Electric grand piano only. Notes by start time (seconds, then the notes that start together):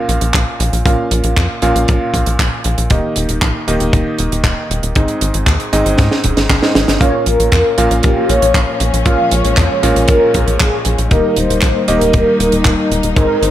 Already playing: A#2 C#4 F4 A#4 F5
0.86 A#2 C#4 F4 A#4 F5
1.62 A#2 C#4 F4 A#4 F5
2.91 D#3 A#3 D#4 G4 D#5
3.68 D#3 A#3 D#4 G4 D#5
4.96 G#2 C4 D#4 G#4 D#5
5.73 G#2 C4 D#4 G#4 D#5
6.62 G#2 C4 D#4 G#4 D#5
7.01 A#2 C#4 F4 A#4 F5
7.78 A#2 C#4 F4 A#4 F5
9.06 A#2 C#4 F4 A#4 F5
9.83 A#2 C#4 F4 A#4 F5
11.11 D#3 A#3 D#4 G4 D#5
11.88 D#3 A#3 D#4 G4 D#5
13.16 G#2 C4 D#4 G#4 D#5